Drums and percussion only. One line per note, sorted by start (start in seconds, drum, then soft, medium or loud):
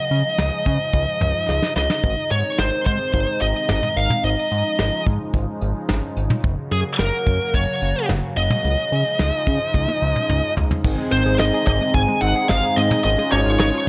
0.11 closed hi-hat medium
0.38 snare loud
0.38 closed hi-hat medium
0.66 kick medium
0.66 closed hi-hat medium
0.93 kick medium
0.93 closed hi-hat medium
1.21 closed hi-hat medium
1.21 mid tom medium
1.49 snare medium
1.63 snare medium
1.76 snare medium
1.90 snare medium
2.04 kick loud
2.04 closed hi-hat medium
2.31 closed hi-hat medium
2.58 snare loud
2.58 closed hi-hat medium
2.86 kick medium
2.86 closed hi-hat medium
3.14 kick medium
3.14 closed hi-hat medium
3.41 closed hi-hat medium
3.69 snare loud
3.69 closed hi-hat medium
3.69 mid tom medium
3.83 mid tom medium
3.97 closed hi-hat medium
4.10 mid tom loud
4.24 closed hi-hat medium
4.52 closed hi-hat medium
4.79 snare loud
4.79 closed hi-hat medium
5.06 kick medium
5.06 closed hi-hat medium
5.34 kick medium
5.34 closed hi-hat medium
5.61 closed hi-hat medium
5.89 snare loud
5.89 closed hi-hat medium
5.89 mid tom medium
6.17 closed hi-hat medium
6.30 mid tom loud
6.44 kick loud
6.44 closed hi-hat medium
6.72 closed hi-hat medium
6.99 snare loud
6.99 closed hi-hat medium
7.26 kick medium
7.26 closed hi-hat medium
7.54 kick medium
7.54 closed hi-hat medium
7.82 closed hi-hat medium
8.09 snare loud
8.09 closed hi-hat medium
8.09 mid tom medium
8.37 closed hi-hat medium
8.50 mid tom loud
8.64 closed hi-hat medium
8.92 closed hi-hat medium
9.19 snare loud
9.19 closed hi-hat medium
9.47 kick medium
9.47 closed hi-hat medium
9.74 kick medium
9.74 high tom medium
9.88 high tom medium
10.16 mid tom medium
10.29 mid tom medium
10.57 floor tom medium
10.71 floor tom medium
10.85 kick loud
10.85 crash loud
11.12 closed hi-hat medium
11.39 snare loud
11.39 closed hi-hat medium
11.67 kick medium
11.67 closed hi-hat medium
11.67 cowbell medium
11.94 kick medium
11.94 closed hi-hat medium
12.22 closed hi-hat medium
12.49 snare loud
12.49 closed hi-hat medium
12.49 mid tom medium
12.77 closed hi-hat loud
12.91 mid tom loud
13.05 closed hi-hat medium
13.32 closed hi-hat medium
13.32 cowbell medium
13.59 snare loud
13.59 closed hi-hat medium